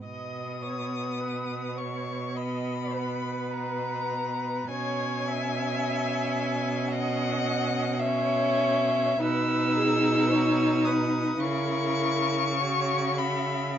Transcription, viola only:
0.05 D#5
0.62 C#5
1.21 B4
1.76 C#5
2.35 D#5
2.95 B4
4.71 C#5
5.27 E5
6.91 D#5
8.01 C#5
9.20 B4
9.77 G#4
10.30 C#5
10.86 B4
11.44 A#4
12.57 C#5
13.18 E5

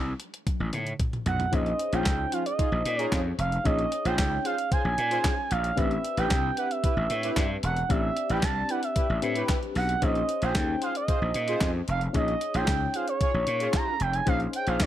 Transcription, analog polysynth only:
1.92 F3 C#4 F4
2.32 F3 C#4 F4
2.58 D#4 F4 G#4
2.98 D#4 F4 G#4
4.05 F4 G#4 C5
4.44 F4 G#4 C5
4.71 F4 G#4 C5
5.11 F4 G#4 C5
6.17 E4 G4 B4
6.58 E4 G4 B4
6.83 E4 G4 B4
7.24 E4 G4 B4
8.30 E4 G4 B4
8.70 E4 G4 B4
8.96 E4 G4 B4
9.36 E4 G4 B4
10.42 F4 G#4 C5
10.81 F4 G#4 C5
11.08 F4 G#4 C5
11.48 F4 G#4 C5
12.54 F4 G#4 C5
12.95 F4 G#4 C5
13.21 F4 G#4 C#5
13.61 F4 G#4 C#5
14.67 F4 G#4 C5

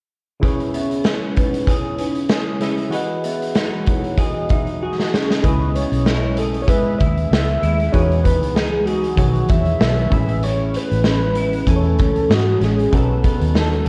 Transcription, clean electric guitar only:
0.42 C#3
0.73 B3
1.05 C#4
1.36 B3
1.67 G#4
1.99 C#4
2.30 G#4
2.62 C#4
2.92 E3
3.25 B3
3.57 D#4
3.88 B3
4.19 G#4
4.50 D#4
4.82 G#4
5.14 C#3
5.45 C#3 G#4
5.76 B3
6.08 E4
6.39 G#4
6.69 G#3
7.01 E4
7.32 B3
7.62 E4
7.93 E3 G#4
8.25 B3
8.56 D#4
8.87 G#4
9.18 F#3
9.80 B3
10.11 A2
10.43 A2 E4
11.06 C#4
11.37 E4
11.67 E3
11.99 C#4
12.30 G#3
12.62 C#4
12.93 B2 A4
13.23 B3
13.54 D#4

